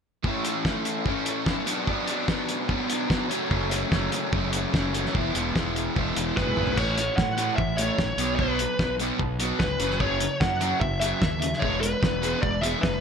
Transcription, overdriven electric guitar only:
0.24 0.65 A2 medium
0.24 0.63 E3 medium
0.24 0.47 A3 medium
0.24 0.46 C#4 medium
0.24 0.44 E4 medium
0.45 0.64 A3 soft
0.45 0.65 C#4 soft
0.45 0.67 E4 medium
0.64 1.04 E3 medium
0.64 1.05 A3 medium
0.64 1.06 C#4 medium
0.64 1.07 E4 medium
1.04 1.46 A2 medium
1.04 1.43 E3 medium
1.04 1.27 A3 medium
1.04 1.25 C#4 medium
1.04 1.24 E4 medium
1.25 1.45 A3 soft
1.25 1.46 C#4 soft
1.25 1.46 E4 medium
1.44 1.65 E3 medium
1.44 1.66 A3 medium
1.44 1.66 C#4 medium
1.44 1.64 E4 medium
1.65 1.84 B2 medium
1.65 1.86 F#3 medium
1.65 1.86 B3 medium
1.65 1.87 D4 medium
1.85 2.26 B2 medium
1.85 2.10 F#3 medium
1.85 2.07 B3 medium
1.85 2.05 D4 medium
2.06 2.28 F#3 medium
2.06 2.28 B3 medium
2.06 2.30 D4 medium
2.27 2.67 B2 medium
2.27 2.68 F#3 medium
2.27 2.69 B3 medium
2.27 2.70 D4 medium
2.68 3.07 B2 medium
2.68 2.90 F#3 medium
2.68 2.88 B3 medium
2.68 2.86 D4 medium
2.87 3.08 F#3 soft
2.87 3.09 B3 medium
2.87 3.10 D4 medium
3.08 3.29 B2 medium
3.08 3.29 F#3 medium
3.08 3.29 B3 medium
3.08 3.28 D4 medium
3.29 3.48 F#2 medium
3.29 3.49 C#3 medium
3.29 3.50 F#3 medium
3.29 3.51 A3 medium
3.29 3.51 C#4 medium
3.49 3.91 F#2 medium
3.49 3.89 C#3 medium
3.49 3.73 F#3 medium
3.49 3.71 A3 medium
3.49 3.69 C#4 medium
3.70 3.91 F#3 medium
3.70 3.91 A3 medium
3.70 3.93 C#4 medium
3.90 4.31 C#3 medium
3.90 4.32 F#3 medium
3.90 4.33 A3 medium
3.90 4.34 C#4 medium
4.31 4.73 F#2 medium
4.31 4.70 C#3 medium
4.31 4.54 F#3 medium
4.31 4.52 A3 medium
4.31 4.50 C#4 medium
4.52 4.71 F#3 soft
4.52 4.72 A3 medium
4.52 4.73 C#4 medium
4.71 5.12 C#3 soft
4.71 4.96 F#3 medium
4.71 4.94 A3 medium
4.71 4.92 C#4 medium
4.94 5.14 F#3 medium
4.94 5.14 A3 medium
4.94 5.13 C#4 medium
5.13 5.53 E3 medium
5.13 5.37 G#3 medium
5.13 5.35 B3 medium
5.13 5.33 E4 medium
5.34 5.54 G#3 soft
5.34 5.55 B3 medium
5.34 5.56 E4 medium
5.54 5.94 E3 medium
5.54 5.95 G#3 medium
5.54 5.97 B3 medium
5.54 5.98 E4 medium
5.95 6.35 E3 medium
5.95 6.19 G#3 medium
5.95 6.17 B3 medium
5.95 6.15 E4 medium
6.16 6.36 G#3 soft
6.16 6.38 B3 medium
6.16 6.38 E4 medium
6.36 6.76 E3 soft
6.36 6.59 G#3 medium
6.36 6.57 B3 medium
6.36 6.55 E4 medium
6.56 6.77 B3 medium
6.56 6.76 E4 medium
6.60 6.78 G#3 soft
6.77 6.96 A2 medium
6.77 6.96 E3 medium
6.77 6.97 A3 medium
6.97 7.16 A2 medium
6.97 7.16 E3 medium
7.18 7.36 A2 medium
7.18 7.36 E3 medium
7.37 7.57 A2 medium
7.37 7.57 E3 medium
7.37 7.57 A3 medium
7.59 7.77 A2 medium
7.59 7.77 E3 medium
7.79 7.97 A2 medium
7.79 7.98 E3 medium
7.79 7.99 A3 medium
7.98 8.17 A2 medium
7.98 8.17 E3 medium
8.19 8.38 B2 medium
8.19 8.38 F#3 medium
8.19 8.39 B3 medium
8.39 8.58 B2 medium
8.39 8.59 F#3 medium
8.39 8.59 B3 medium
8.61 8.78 B2 medium
8.61 8.78 F#3 medium
8.80 8.98 B2 medium
8.80 8.98 F#3 medium
9.00 9.18 B2 medium
9.00 9.18 F#3 medium
9.00 9.19 B3 medium
9.19 9.38 B2 medium
9.19 9.38 F#3 medium
9.40 9.58 B2 medium
9.40 9.59 F#3 medium
9.40 9.60 B3 medium
9.59 9.78 B2 medium
9.59 9.78 F#3 medium
9.80 9.98 F#2 medium
9.80 9.98 C#3 medium
9.80 9.99 F#3 medium
9.99 10.19 F#2 medium
9.99 10.19 C#3 medium
9.99 10.20 F#3 medium
10.20 10.39 F#2 medium
10.20 10.39 C#3 medium
10.41 10.59 F#2 medium
10.41 10.59 C#3 medium
10.60 10.79 F#2 medium
10.60 10.80 C#3 medium
10.60 10.80 F#3 medium
10.81 10.99 F#2 medium
10.81 10.99 C#3 medium
11.01 11.20 F#2 medium
11.01 11.20 C#3 medium
11.01 11.21 F#3 medium
11.21 11.39 F#2 soft
11.21 11.40 C#3 medium
11.40 11.59 F#2 medium
11.40 11.60 C#3 medium
11.61 11.81 E3 medium
11.61 11.81 G#3 medium
11.61 11.81 B3 medium
11.82 12.00 E3 medium
11.82 12.01 G#3 medium
12.02 12.20 E3 medium
12.02 12.21 G#3 medium
12.22 12.41 E3 medium
12.22 12.42 G#3 medium
12.22 12.42 B3 medium
12.42 12.60 E3 medium
12.42 12.61 G#3 medium
12.62 12.81 E3 medium
12.62 12.82 G#3 medium
12.62 12.82 B3 medium
12.84 13.01 E3 soft
12.84 13.01 G#3 soft

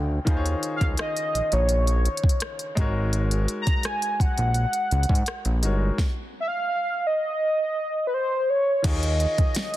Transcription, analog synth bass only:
0.00 0.19 D2 medium
0.27 0.55 D#2 loud
0.81 0.95 C#2 medium
1.35 1.42 A#1 soft
1.53 2.08 A#1 medium
2.77 3.47 G#1 loud
4.20 4.27 A#1 soft
4.38 4.66 A#1 medium
4.92 5.06 C#2 medium
5.10 5.23 G#2 loud
5.45 5.65 A#1 medium
5.63 5.91 G1 medium
8.85 9.26 D#2 loud
9.39 9.46 F2 soft

